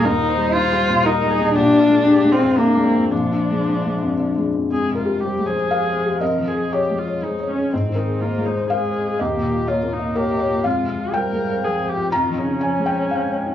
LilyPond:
<<
  \new Staff \with { instrumentName = "Viola" } { \time 3/4 \key f \minor \tempo 4 = 120 bes'8 c''4. bes'8 aes'8 | g'8 f'8 g'8 f'8 d'8 c'8 | d'2~ d'8 r8 | aes'8 f'8 g'8 aes'4. |
bes'8 aes'8 g'8 f'8 ees'8 des'8 | c'8 ees'8 f'8 ees'8 aes'4 | g'4 f'8 ees'8 g'4 | f'4 bes'4 aes'8 g'8 |
f'8 des'2~ des'8 | }
  \new Staff \with { instrumentName = "Felt piano" } { \time 3/4 \key f \minor << { r2. | r2. | r2. | r8 bes'4 c''8 f''4 |
ees''4 des''4 aes'4 | r8 bes'4 c''8 f''4 | ees''4 des''4 bes'8 des''8 | f''4 g''2 |
bes''4 aes''8 g''8 f''4 | } \\ { \tuplet 3/2 { <ees, bes,>8 ees'8 g8 ees'8 g8 bes,8 ees'8 g8 bes,8 } | \tuplet 3/2 { bes,,8 d'8 aes8 d'8 aes8 f,8 d'8 aes8 f,8 } | \tuplet 3/2 { bes,,8 d'8 aes8 d'8 aes8 f,8 d'8 aes8 f,8 } | \tuplet 3/2 { f,8 c8 g'8 c''8 aes8 c''8 bes'8 c''8 g'8 } |
\tuplet 3/2 { f,8 f8 aes'8~ aes'8 aes8 des''8 c''8 des''8 aes'8 } | \tuplet 3/2 { aes,8 ees8 aes'8 c''8 aes8 c''8 bes'8 c''8 aes'8 } | \tuplet 3/2 { ees,8 bes,8 f'8 ees''8 bes8 ees''8 des''8 ees''8 f'8 } | \tuplet 3/2 { f,8 c8 f'8 c''8 aes8 c''8 bes'8 c''8 f'8 } |
\tuplet 3/2 { f,8 f8 ees'8 des''8 aes8 des''8 c''8 des''8 ees'8 } | } >> }
  \new Staff \with { instrumentName = "Cello" } { \clef bass \time 3/4 \key f \minor ees'4 f'4 ees'4 | d'4. c'8 bes4 | f2~ f8 r8 | aes4 g8 f4.~ |
f2 aes8 des'8 | c'4 bes8 aes8 aes4 | bes4 bes2 | aes4 g4 f4 |
ees8 des8 f4 aes4 | }
>>